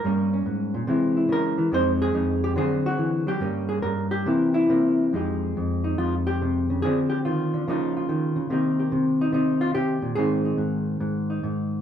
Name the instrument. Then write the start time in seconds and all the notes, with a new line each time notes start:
hollow-body jazz guitar
Already playing: A#4
0.04 G2 G3 A#3 C#4
0.33 C#4
0.46 G#2
0.74 A#2
0.87 C3 E3 G#3 E4
1.17 E4
1.29 C#3 A#4
1.58 E3
1.72 F2 G#3 C4 D#4 C5
2.02 G#4
2.14 F2 D#4
2.44 G4
2.56 D3 F#3 C4 D4 G#4
2.86 F#4
2.98 E3
3.27 F#3 G4
3.40 G2 G3 A#3 C#4
3.69 G#4
3.82 G2 A#4
4.11 G4
4.26 C3 E3 A#3 E4
4.54 E4
4.69 C3 A#3
5.13 F2 F3 G#3 D#4 G4
5.57 F2
5.84 D#4
5.98 F2 F4
6.27 G4
6.42 C3
6.70 C#3
6.82 D3 F3 C4 D4 G#4
7.10 G4
7.25 D#3 F4
7.54 D3
7.67 C#3 F3 A#3 D#4 F4
7.97 F4
8.09 D#3
8.36 C#3
8.50 C3 D#3 A#3 D#4 G4
8.80 G4
8.92 C3
9.21 D#4
9.32 C3 D#4
9.61 F4
9.75 C3 G4
10.02 A#2
10.15 G#2 D#3 C4 D#4 G#4
10.45 D#4
10.58 G#2
11.00 G#2
11.30 D#4
11.43 G#2